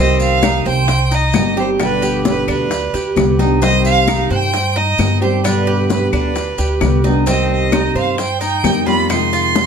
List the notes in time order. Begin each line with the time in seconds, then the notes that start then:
Already playing: C2 C3 D#3 C4
0.00 G3 C4 G4 D#5
0.20 F5, high conga, maracas
0.42 D#4, high bongo, high conga, claves, maracas
0.65 C2 C5 G5, high bongo, high conga, maracas
0.88 muted nylon-string guitar stroke, high bongo, high conga, maracas
1.11 D#4 D#5, high bongo, high conga, maracas
1.33 G1 D#3 G3 C4 G4, high bongo, low bongo, high conga, claves, maracas
1.56 D#3 G3 C4 G4 C5, high bongo, maracas
1.79 B2 D3 G3 B3 D4 G4 B4, high bongo, high conga, claves, maracas
2.02 G4, high conga, maracas
2.25 high bongo, high conga, maracas
2.29 B4
2.48 D2 D4 B4, high bongo, high conga, claves, maracas
2.70 muted nylon-string guitar stroke, high bongo, high conga, maracas
2.93 D2 G4, high bongo, high conga, maracas
3.16 C2 D3 G3 B3 G4, high bongo, low bongo, high conga, claves, maracas
3.39 D3 G3 B3 D#4 G4, high bongo, high conga, maracas
3.60 C3 D#3 G3 C4 G4 D#5, high bongo, maracas
3.85 F5, high conga, maracas
4.08 D#4, high bongo, high conga, claves, maracas
4.30 G2 C5 G5, high bongo, high conga, maracas
4.53 muted nylon-string guitar stroke, high bongo, high conga, maracas
4.76 D#4 D#5, high bongo, high conga
4.98 G2 D#3 G3 C4 G4, high bongo, low bongo, high conga, claves, maracas
5.21 D#3 G3 C4 G4 C5, high bongo, maracas
5.44 B2 D3 G3 B3 D4 G4 B4, high bongo, high conga, claves, maracas
5.67 G4, high conga
5.90 B4, high bongo, high conga, maracas
6.13 D2 D4 B4, high bongo, high conga, claves, maracas
6.35 muted nylon-string guitar stroke, high bongo, high conga, maracas
6.58 D2 G4, high bongo, high conga, maracas
6.81 C2 D3 G3 B3 G4, high bongo, low bongo, high conga, claves, maracas
7.04 D3 G3 B3 D#4 G4, high bongo, high conga, maracas
7.26 C3 D#3 G3 C4 G4, high bongo, high conga, maracas
7.30 D#5
7.50 D#5, high conga
7.72 D#4, high bongo, high conga, claves, maracas
7.95 G2 C5 F5, high bongo, high conga, maracas
8.18 G5, muted nylon-string guitar stroke, high bongo, high conga, maracas
8.41 D#4 G5, high bongo, high conga, maracas
8.63 F2 D#3 G3 C4 G4, high bongo, low bongo, high conga, claves, maracas
8.86 D#3 G3 C4 F4 G4 B5, high bongo, high conga, maracas
9.09 C3 D#3 G#3 C4 D#4 F4 C6, high bongo, high conga, claves, maracas
9.33 F4, high conga, maracas
9.55 high bongo, high conga, maracas